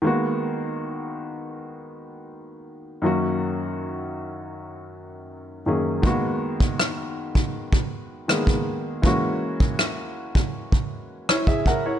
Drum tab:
SD |----------------|----------------|----r-------r---|----r-------r---|
BD |----------------|----------------|o--o---o-o---o--|o--o---o-o---oo-|